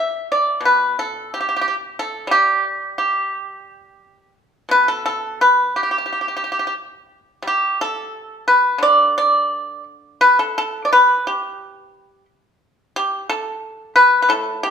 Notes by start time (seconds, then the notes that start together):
Already playing: G3 E5
0.32 D5
0.61 B2
0.65 B4
0.99 A4
1.34 G4
1.41 G4
1.49 G4
1.56 G4
1.61 G4
1.68 G4
1.99 A4
2.27 G3
2.31 G4
2.98 G4
4.69 B2 B4
4.88 A4
5.06 A4
5.41 B4
5.76 G4
5.83 G4
5.91 G4
5.98 G4
6.06 G4
6.13 G4
6.21 G4
6.28 G4
6.37 G4
6.44 G4
6.52 G4
6.59 G4
6.67 G4
7.42 G3
7.47 G4
7.81 A4
8.48 B4
8.78 D3
8.83 D5
9.18 D5
10.21 B4
10.39 A4
10.58 A4
10.85 D5
10.93 B4
11.27 G4
12.96 G4
13.29 A4
13.96 B4
14.22 B4
14.29 A2 A4
14.63 G4